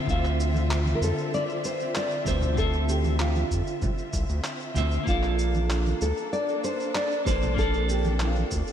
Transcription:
0.00 5.04 D3 medium
0.00 2.21 D3 medium
0.00 5.04 C4 medium
0.00 5.04 F4 medium
0.00 5.04 E5 medium
0.06 0.94 D2 loud
0.06 2.22 C4 medium
0.06 2.23 F4 medium
0.06 0.98 F4 medium
0.06 kick loud
0.06 shaker soft
0.10 2.24 E5 medium
0.25 clap soft
0.25 shaker soft
0.40 shaker medium
0.54 high conga medium
0.54 shaker soft
0.71 clap loud
0.71 shaker soft
0.86 high conga medium
0.86 shaker soft
0.95 1.02 A#4 medium
1.01 1.13 F2 medium
1.01 1.34 A4 loud
1.01 shaker medium
1.18 shaker soft
1.34 1.43 D5 loud
1.34 shaker soft
1.49 shaker soft
1.64 1.94 C5 loud
1.64 shaker medium
1.80 shaker soft
1.95 2.27 D5 loud
1.95 clap loud
1.95 shaker medium
2.11 shaker soft
2.25 3.44 D2 medium
2.25 2.52 D3 medium
2.25 2.53 C4 medium
2.25 2.54 F4 medium
2.25 2.58 C5 medium
2.25 2.55 E5 medium
2.25 kick loud
2.25 shaker medium
2.41 low conga medium
2.41 shaker soft
2.53 4.70 D3 medium
2.53 4.71 C4 medium
2.57 4.73 F4 medium
2.57 2.90 A4 loud
2.57 4.74 E5 medium
2.57 kick loud
2.57 shaker soft
2.73 shaker soft
2.89 3.20 G4 medium
2.89 shaker medium
3.04 high conga medium
3.04 shaker soft
3.20 3.79 F4 medium
3.20 clap loud
3.20 shaker soft
3.35 high conga medium
3.35 shaker soft
3.51 3.63 F2 loud
3.51 kick medium
3.51 shaker medium
3.67 shaker soft
3.82 kick loud
3.82 low conga medium
3.82 shaker soft
3.98 shaker soft
4.13 4.25 C2 medium
4.13 kick loud
4.13 shaker medium
4.29 4.40 D2 loud
4.29 shaker soft
4.44 clap loud
4.44 shaker soft
4.60 shaker soft
4.74 4.98 D2 loud
4.74 5.03 D3 medium
4.74 5.03 C4 medium
4.74 5.04 F4 medium
4.74 5.05 E5 medium
4.74 low conga medium
4.74 shaker medium
4.91 shaker soft
5.04 5.94 A#1 loud
5.04 7.21 A#3 medium
5.04 7.22 F4 medium
5.04 kick loud
5.04 shaker soft
5.08 7.55 A#3 medium
5.08 8.72 D4 medium
5.08 6.05 F4 loud
5.08 8.72 A4 medium
5.08 7.23 A4 medium
5.08 7.24 D5 medium
5.23 clap soft
5.23 shaker soft
5.39 shaker medium
5.54 high conga medium
5.54 shaker soft
5.70 clap loud
5.70 shaker soft
5.86 high conga medium
5.86 shaker soft
6.01 6.13 D2 medium
6.01 6.32 A4 medium
6.01 shaker medium
6.17 shaker soft
6.33 6.64 D5 loud
6.33 shaker soft
6.49 shaker soft
6.64 6.95 C5 loud
6.64 shaker medium
6.80 shaker soft
6.95 7.24 D5 loud
6.95 clap loud
6.95 shaker soft
7.11 shaker soft
7.25 8.44 A#1 medium
7.25 7.53 A#3 medium
7.25 7.54 F4 medium
7.25 7.54 A4 medium
7.25 7.58 C5 loud
7.25 7.55 D5 medium
7.25 kick loud
7.25 shaker medium
7.42 low conga medium
7.42 shaker soft
7.54 8.72 A#3 medium
7.54 8.72 C4 medium
7.54 8.72 F4 medium
7.54 kick loud
7.58 8.72 A4 medium
7.58 7.87 A4 loud
7.58 8.72 D5 medium
7.58 shaker soft
7.74 shaker soft
7.89 8.21 G4 medium
7.89 shaker medium
8.05 high conga medium
8.05 shaker soft
8.20 8.72 F4 medium
8.20 clap loud
8.20 shaker soft
8.36 high conga medium
8.36 shaker soft
8.51 8.63 D2 medium
8.51 kick medium
8.51 shaker medium
8.67 shaker soft

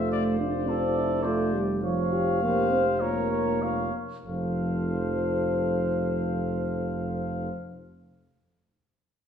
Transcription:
0.00 3.90 F1 soft
0.00 0.40 A3 medium
0.00 0.67 F4 soft
0.00 0.70 C5 soft
0.00 0.11 E5 soft
0.12 0.24 D5 soft
0.39 0.68 D4 medium
0.39 1.25 D5 soft
0.67 1.24 C4 medium
0.67 0.98 F4 soft
0.67 1.26 A4 soft
0.97 1.27 E4 soft
1.23 1.55 A3 medium
1.23 1.63 F4 soft
1.23 1.61 C5 soft
1.23 1.62 D5 soft
1.53 1.82 G3 medium
1.82 2.40 F3 medium
1.82 2.15 F4 soft
1.82 2.44 C#5 soft
1.82 3.03 F5 soft
2.13 2.42 G4 soft
2.42 2.71 A#3 medium
2.42 3.03 G4 soft
2.42 3.03 C5 soft
2.71 2.85 C4 medium
3.01 3.92 A#3 medium
3.01 3.62 F4 soft
3.01 3.65 A#4 soft
3.01 3.30 C#5 soft
3.31 3.64 C#5 soft
3.63 3.93 F4 soft
3.63 3.94 C#5 soft
3.63 3.94 F5 soft
4.25 7.49 F1 soft
4.25 7.49 F3 medium
4.25 7.49 A4 soft
4.25 7.49 C5 soft
4.25 7.49 F5 soft

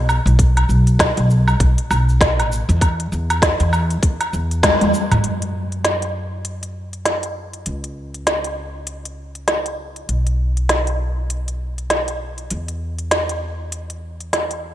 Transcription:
0.00 0.18 B1 medium
0.09 low woodblock medium
0.09 shaker medium
0.26 0.64 B1 loud
0.26 closed hi-hat soft
0.26 shaker soft
0.39 kick loud
0.39 closed hi-hat medium
0.39 shaker soft
0.57 closed hi-hat soft
0.57 low woodblock medium
0.69 1.11 B1 medium
0.69 shaker medium
0.87 closed hi-hat soft
0.87 shaker soft
0.99 kick medium
0.99 snare loud
0.99 closed hi-hat medium
0.99 low woodblock medium
0.99 shaker soft
1.17 1.56 B1 loud
1.17 closed hi-hat soft
1.17 shaker soft
1.30 shaker medium
1.48 low woodblock medium
1.48 shaker soft
1.60 1.74 B1 loud
1.60 kick medium
1.60 closed hi-hat medium
1.60 shaker soft
1.78 closed hi-hat soft
1.91 2.39 B1 medium
1.91 low woodblock medium
1.91 shaker medium
2.09 shaker soft
2.21 kick loud
2.21 snare loud
2.21 closed hi-hat medium
2.21 shaker soft
2.39 2.61 A1 medium
2.39 closed hi-hat soft
2.39 low woodblock medium
2.39 shaker soft
2.52 shaker medium
2.69 3.07 E2 loud
2.69 closed hi-hat soft
2.69 shaker soft
2.81 kick loud
2.81 closed hi-hat medium
2.81 low woodblock medium
2.81 shaker soft
3.00 closed hi-hat soft
3.12 3.54 E2 medium
3.12 shaker medium
3.30 closed hi-hat soft
3.30 low woodblock medium
3.30 shaker soft
3.42 kick loud
3.42 snare loud
3.42 closed hi-hat medium
3.42 shaker soft
3.60 3.98 E2 loud
3.60 closed hi-hat soft
3.60 shaker soft
3.73 low woodblock medium
3.73 shaker medium
3.90 closed hi-hat soft
3.90 shaker soft
4.03 4.17 E2 medium
4.03 kick loud
4.03 closed hi-hat medium
4.03 shaker soft
4.21 closed hi-hat soft
4.21 low woodblock medium
4.21 shaker soft
4.33 4.75 E2 medium
4.33 shaker medium
4.51 closed hi-hat soft
4.51 shaker soft
4.63 kick loud
4.63 snare loud
4.63 closed hi-hat medium
4.63 high tom medium
4.63 low woodblock medium
4.63 shaker soft
4.81 4.91 E2 medium
4.81 closed hi-hat soft
4.81 high tom medium
4.81 shaker soft
4.94 shaker medium
5.11 5.21 E2 loud
5.11 closed hi-hat soft
5.11 mid tom medium
5.11 low woodblock medium
5.11 shaker soft
5.24 7.64 F#2 medium
5.24 closed hi-hat medium
5.42 closed hi-hat soft
5.72 closed hi-hat soft
5.85 snare medium
5.85 closed hi-hat medium
6.02 closed hi-hat soft
6.45 closed hi-hat medium
6.63 closed hi-hat soft
6.93 closed hi-hat soft
7.05 snare medium
7.05 closed hi-hat medium
7.23 closed hi-hat soft
7.53 closed hi-hat soft
7.66 10.06 C#2 medium
7.66 closed hi-hat medium
7.84 closed hi-hat soft
8.14 closed hi-hat soft
8.27 snare medium
8.27 closed hi-hat medium
8.44 closed hi-hat soft
8.87 closed hi-hat medium
9.05 closed hi-hat soft
9.35 closed hi-hat soft
9.48 snare medium
9.48 closed hi-hat medium
9.66 closed hi-hat soft
9.96 closed hi-hat soft
10.09 12.49 B1 medium
10.09 closed hi-hat medium
10.27 closed hi-hat soft
10.57 closed hi-hat soft
10.69 snare medium
10.69 closed hi-hat medium
10.87 closed hi-hat soft
11.30 closed hi-hat medium
11.48 closed hi-hat soft
11.78 closed hi-hat soft
11.90 snare medium
11.90 closed hi-hat medium
12.08 closed hi-hat soft
12.38 closed hi-hat soft
12.50 14.74 E2 medium
12.50 closed hi-hat medium
12.68 closed hi-hat soft
12.98 closed hi-hat soft
13.11 snare medium
13.11 closed hi-hat medium
13.29 closed hi-hat soft
13.72 closed hi-hat medium
13.90 closed hi-hat soft
14.20 closed hi-hat soft
14.33 snare medium
14.33 closed hi-hat medium
14.51 closed hi-hat soft

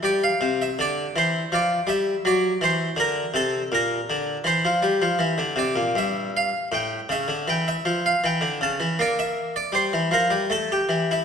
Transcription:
0.03 0.30 G3 medium
0.03 0.23 D5 medium
0.24 0.60 F5 medium
0.41 0.68 C3 medium
0.62 0.79 E5 medium
0.79 1.05 D3 medium
0.79 1.17 D5 medium
1.16 1.42 E3 medium
1.16 1.53 C5 medium
1.52 1.78 F3 medium
1.52 1.84 D5 medium
1.87 2.14 G3 medium
1.87 2.25 E5 medium
2.25 2.52 F#3 medium
2.25 2.58 D5 medium
2.61 2.88 E3 medium
2.61 2.95 C5 medium
2.96 3.24 D3 medium
2.96 3.31 A#4 medium
3.34 3.61 C3 medium
3.34 3.67 A4 medium
3.72 3.99 A#2 medium
3.72 4.48 A#4 medium
4.10 4.36 D3 medium
4.44 4.63 E3 medium
4.44 5.42 C5 medium
4.65 4.83 F3 medium
4.83 5.01 G3 medium
5.02 5.20 F3 medium
5.19 5.38 E3 medium
5.38 5.57 D3 medium
5.56 5.75 C3 medium
5.56 5.90 D5 medium
5.76 5.94 A#2 medium
5.95 6.50 G2 medium
5.95 6.29 E5 medium
6.37 6.67 F5 medium
6.72 6.99 A2 medium
6.72 7.10 G5 medium
7.09 7.27 C#3 medium
7.09 7.48 E5 loud
7.28 7.46 D3 medium
7.48 7.75 E3 medium
7.48 7.67 G5 loud
7.68 8.00 E5 medium
7.85 8.13 F3 medium
8.06 8.24 F5 medium
8.24 8.42 E3 medium
8.24 8.57 G5 medium
8.41 8.60 D3 medium
8.61 8.79 C#3 medium
8.61 9.00 A5 loud
8.80 8.98 E3 medium
8.99 9.53 A#3 medium
8.99 9.19 D5 medium
9.19 9.56 E5 loud
9.56 9.75 D5 medium
9.72 9.91 G3 medium
9.72 10.13 C5 medium
9.93 10.12 E3 medium
10.11 10.30 F3 medium
10.11 10.46 A#4 medium
10.30 10.50 G3 medium
10.50 10.79 A3 medium
10.50 10.71 A4 medium
10.72 11.11 G4 medium
10.89 11.18 E3 medium
11.11 11.25 E4 medium

